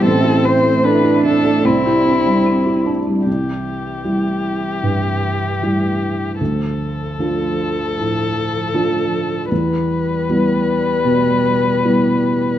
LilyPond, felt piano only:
\new Staff \with { instrumentName = "Felt piano" } { \time 4/4 \key c \major \tempo 4 = 76 a,,16 e'16 c'16 a8 e'16 c'16 a16 c,16 e'16 d'16 g8 e'16 d'16 g16 | c,4 <g e'>4 g,4 <g e'>4 | d,4 <f d' f'>4 a,4 <f d' f'>4 | e,4 <g b e'>4 b,4 <g b e'>4 | }